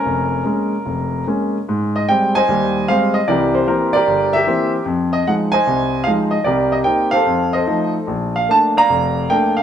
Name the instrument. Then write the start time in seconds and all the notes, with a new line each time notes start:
grand piano
Already playing: C#4 A#4
0.06 F1
0.45 G#3 A#3 C#4
0.86 F1
1.27 G#3 A#3 C#4
1.69 G#2
1.96 D#5
2.09 G3 G#3 C4 G5
2.35 C5 D#5 G#5
2.48 D#2 G3
2.88 G3 G#3 C4 F5
3.14 D#5
3.28 C2 E3 G4 A#4 D5
3.55 C5
3.68 E3 A#3 C4 A#4
3.93 G4 A#4 D5
4.07 G1
4.33 G4 A#4 E5
4.47 E3 A#3 C4
4.86 F2
5.13 D#5
5.27 F3 G#3 D#4 F#5
5.52 C5 D#5 G#5
5.67 C2
6.04 F3 G#3 D#4 F5
6.31 D#5
6.44 C2 G4 A#4 D5
6.72 D#5
6.84 A#3 C4 D#4 G5
7.11 A4 C5 F5
7.26 F2
7.53 A4 C5 D#5
7.66 F3 A3 D#4
8.07 A#1
8.36 F5
8.48 A3 A#3 D4 A5
8.77 D5 F5 A#5
8.89 F1
9.30 A3 A#3 D4 G5
9.57 F5